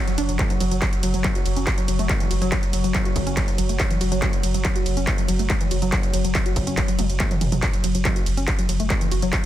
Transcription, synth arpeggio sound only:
0.08 0.11 F#3 medium
0.18 0.22 D4 loud
0.29 0.33 F#3 medium
0.39 0.43 F#3 medium
0.50 0.56 F#3 medium
0.61 0.64 F#3 loud
0.71 0.75 F#3 medium
0.82 0.86 F#3 loud
1.03 1.07 F#3 medium
1.14 1.18 F#3 medium
1.24 1.28 F#3 loud
1.35 1.37 F#4 medium
1.57 1.60 C#4 medium
1.78 1.81 F#3 medium
1.88 1.92 F#3 medium
1.99 2.01 A3 medium
2.09 2.13 G#3 medium
2.20 2.24 E3 medium
2.31 2.37 F#4 medium
2.42 2.47 F#3 loud
2.52 2.56 F#3 loud
2.73 2.77 F#3 medium
2.84 2.88 F#3 medium
2.94 2.98 F#3 loud
3.05 3.08 F#4 medium
3.27 3.30 C#4 medium
3.48 3.52 F#3 medium
3.58 3.62 F#3 medium
3.69 3.72 A3 medium
3.80 3.84 G#3 medium
3.91 3.94 E3 medium
4.01 4.07 F#4 medium
4.12 4.17 F#3 loud
4.22 4.26 F#3 loud
4.43 4.47 F#3 medium
4.54 4.58 F#3 medium
4.65 4.69 F#3 loud
4.76 4.78 F#4 medium
4.97 5.01 C#4 medium
5.18 5.22 F#3 medium
5.28 5.32 F#3 medium
5.39 5.42 A3 medium
5.50 5.54 G#3 medium
5.61 5.65 E3 medium
5.71 5.77 F#4 medium
5.82 5.88 F#3 loud
5.92 5.96 F#3 loud
6.14 6.18 F#3 medium
6.25 6.28 F#3 medium
6.35 6.39 F#3 loud
6.46 6.48 F#4 medium
6.67 6.71 C#4 medium
6.88 6.92 F#3 medium
6.99 7.05 F#3 medium
7.20 7.24 A3 medium
7.31 7.33 F#3 medium
7.41 7.45 E3 medium
7.52 7.56 F#3 medium
7.63 7.67 F#3 loud
7.84 7.88 F#3 medium
7.95 7.98 F#3 medium
8.05 8.09 F#3 loud
8.16 8.18 F#4 medium
8.37 8.41 C#4 medium
8.59 8.62 F#3 medium
8.69 8.73 F#3 medium
8.80 8.82 A3 medium
8.90 8.94 G#3 medium
9.01 9.05 E3 medium
9.12 9.17 F#4 medium
9.22 9.28 F#3 loud
9.33 9.37 F#3 loud

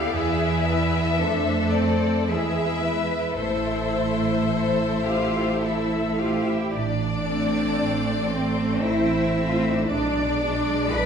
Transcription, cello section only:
0.00 0.14 G4 soft
0.15 0.68 G#4 medium
0.68 1.21 B4 soft
1.21 2.26 A4 soft
2.29 2.83 G#4 soft
2.83 3.39 B4 soft
3.38 4.38 A4 soft
4.52 5.03 A4 soft
5.07 5.58 F4 medium
5.07 5.62 G4 soft
5.63 6.19 E4 soft
5.63 6.19 A4 soft
6.18 6.46 F4 medium
6.18 6.73 G4 soft
6.47 6.74 E4 medium
6.74 8.33 D4 medium
8.32 8.84 C4 medium
8.84 9.53 E4 medium
9.52 9.61 F4 medium
9.62 9.71 E4 medium
9.70 9.80 D4 medium
9.80 9.89 E4 medium
9.89 10.93 D4 medium
10.94 11.06 B4 medium

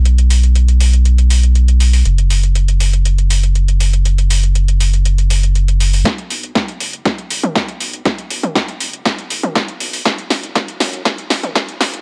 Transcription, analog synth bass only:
0.00 2.03 B1 medium
2.05 6.03 F#1 medium
6.30 6.52 B1 medium
6.56 6.77 B1 medium
6.81 7.02 F#1 medium
7.31 7.42 A1 medium
7.44 7.65 B1 medium
7.80 8.02 B1 loud
8.30 8.52 B1 medium
8.56 8.77 B1 medium
8.81 9.02 F#1 medium
9.31 9.42 A1 medium
9.44 9.65 B1 medium
9.81 10.02 B1 loud
10.31 10.52 F#1 loud
10.56 10.77 F#1 medium
10.80 11.02 F#2 medium
11.31 11.42 E1 loud
11.43 11.65 F#1 loud
11.80 12.02 F#1 medium

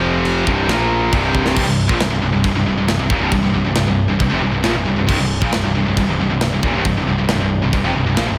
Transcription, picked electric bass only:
0.00 0.43 F1 loud
0.47 0.67 C1 loud
0.69 1.09 A#1 loud
1.12 1.53 C1 medium
1.56 1.67 C1 loud
1.67 1.88 C1 medium
1.89 1.99 A#1 loud
1.99 2.10 C1 medium
2.10 2.21 C1 medium
2.21 2.32 C1 medium
2.33 2.43 C1 medium
2.44 2.53 C1 medium
2.54 2.65 C1 medium
2.65 2.75 C1 medium
2.76 2.86 C1 medium
2.87 2.97 C1 medium
2.98 3.09 C1 medium
3.10 3.19 D#1 loud
3.20 3.31 C1 medium
3.32 3.42 C1 medium
3.42 3.53 C1 medium
3.53 3.64 C1 medium
3.64 3.75 C1 medium
3.76 3.86 C1 medium
3.87 4.07 C1 medium
4.09 4.19 C1 medium
4.20 4.30 C1 medium
4.31 4.41 F1 medium
4.43 4.53 C1 medium
4.53 4.63 C1 medium
4.65 4.75 A#1 medium
4.76 4.86 C1 medium
4.87 4.97 C1 medium
4.98 5.08 C1 medium
5.08 5.18 C1 loud
5.20 5.40 C1 medium
5.42 5.52 A#1 loud
5.53 5.63 C1 medium
5.64 5.74 C1 medium
5.75 5.85 C1 medium
5.86 5.96 C1 medium
5.97 6.07 C1 medium
6.08 6.18 C1 medium
6.19 6.29 C1 medium
6.30 6.40 C1 medium
6.41 6.51 C1 medium
6.52 6.62 C1 medium
6.63 6.73 D#1 medium
6.75 6.84 C1 loud
6.85 6.95 C1 medium
6.97 7.07 C1 medium
7.08 7.18 C1 medium
7.19 7.29 C1 medium
7.29 7.39 C1 medium
7.41 7.61 C1 medium
7.63 7.72 C1 medium
7.73 7.83 C1 medium
7.85 7.94 F1 medium
7.96 8.06 C1 medium
8.07 8.17 C1 medium
8.18 8.28 A#1 medium
8.29 8.38 C1 medium

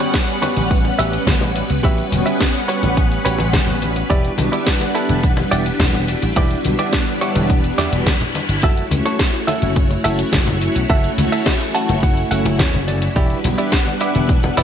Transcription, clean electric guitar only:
0.00 0.14 F#4 medium
0.00 0.14 G4 medium
0.00 0.14 B4 medium
0.00 0.14 C#5 medium
0.28 muted clean electric guitar stroke soft
0.42 0.71 F#4 medium
0.42 0.71 G4 medium
0.42 0.71 B4 medium
0.42 0.71 C#5 medium
0.99 1.13 F#4 loud
0.99 1.13 G4 medium
0.99 1.13 B4 medium
0.99 1.13 E5 loud
1.27 muted clean electric guitar stroke medium
1.41 muted clean electric guitar stroke soft
1.70 muted clean electric guitar stroke soft
1.83 2.05 F#4 loud
1.83 2.05 G4 loud
1.83 2.05 B4 medium
1.83 2.05 E5 loud
2.26 2.40 F#4 medium
2.26 2.40 G4 medium
2.26 2.40 B4 medium
2.26 2.40 E5 medium
2.54 muted clean electric guitar stroke soft
2.68 2.97 F#4 medium
2.68 2.97 G4 medium
2.68 2.97 B4 medium
2.68 2.97 C#5 loud
3.25 3.40 F#4 loud
3.25 3.40 G4 medium
3.25 3.40 B4 medium
3.25 3.40 C#5 loud
3.53 muted clean electric guitar stroke medium
3.67 muted clean electric guitar stroke soft
3.96 muted clean electric guitar stroke soft
4.10 4.31 E4 medium
4.10 4.31 G4 loud
4.10 4.31 D5 loud
4.52 4.67 E4 medium
4.52 4.67 G4 medium
4.52 4.67 D5 medium
4.80 muted clean electric guitar stroke soft
4.95 5.23 E4 medium
4.95 5.23 G4 medium
4.95 5.23 A4 medium
5.51 5.66 E4 loud
5.51 5.66 G4 medium
5.51 5.66 D5 loud
5.80 muted clean electric guitar stroke medium
5.94 muted clean electric guitar stroke soft
6.22 muted clean electric guitar stroke soft
6.36 6.58 E4 loud
6.36 6.58 G4 medium
6.36 6.58 D5 loud
6.79 6.93 E4 medium
6.79 6.93 G4 medium
6.79 6.93 D5 loud
7.07 muted clean electric guitar stroke soft
7.21 7.50 E4 medium
7.21 7.50 G4 medium
7.21 7.50 C#5 medium
7.78 7.92 E4 medium
7.78 7.92 G4 medium
7.78 7.92 D5 loud
8.07 muted clean electric guitar stroke medium
8.21 muted clean electric guitar stroke soft
8.49 muted clean electric guitar stroke soft
8.63 8.85 F#4 loud
8.63 8.85 A4 loud
8.63 8.85 E5 loud
9.06 9.20 F#4 medium
9.06 9.20 A4 medium
9.06 9.20 C#5 medium
9.34 muted clean electric guitar stroke soft
9.47 9.76 F#4 medium
9.47 9.76 A4 medium
9.47 9.76 E5 medium
10.04 10.19 F#4 loud
10.04 10.19 A4 medium
10.04 10.19 E5 loud
10.32 muted clean electric guitar stroke medium
10.47 muted clean electric guitar stroke soft
10.75 muted clean electric guitar stroke soft
10.90 11.11 F#4 loud
10.90 11.11 A4 loud
10.90 11.11 E5 loud
11.32 11.46 F#4 medium
11.32 11.46 A4 medium
11.32 11.46 E5 loud
11.60 muted clean electric guitar stroke soft
11.75 12.03 F#4 medium
11.75 12.03 A4 medium
11.75 12.02 F#5 medium
11.75 12.01 A5 medium
12.03 12.29 F#5 medium
12.31 12.45 F#4 medium
12.31 12.45 A4 medium
12.31 12.58 E5 medium
12.31 12.45 F#5 loud
12.59 12.86 C#5 medium
12.59 muted clean electric guitar stroke medium
12.74 muted clean electric guitar stroke soft
12.88 13.14 D5 medium
13.02 muted clean electric guitar stroke soft
13.16 13.37 E4 loud
13.16 13.37 G4 loud
13.16 13.37 D5 loud
13.58 13.72 E4 medium
13.58 13.72 G4 medium
13.58 13.73 D5 medium
13.87 muted clean electric guitar stroke soft
14.01 14.29 E4 medium
14.01 14.29 G4 medium
14.01 14.29 D5 medium
14.57 14.63 E4 loud
14.57 14.63 G4 medium
14.57 14.63 D5 loud

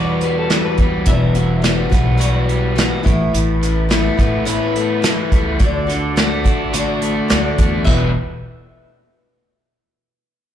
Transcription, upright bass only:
0.00 0.63 E2 medium
0.79 1.03 E2 medium
1.07 1.93 E1 medium
1.93 2.90 B1 medium
3.07 3.31 A1 medium
3.34 4.07 A1 loud
4.19 5.16 A2 medium
5.32 5.56 C#2 medium
5.61 6.46 D2 medium
6.46 7.18 A1 medium
7.31 7.56 D2 medium
7.59 7.84 E2 medium
7.87 8.13 E1 medium

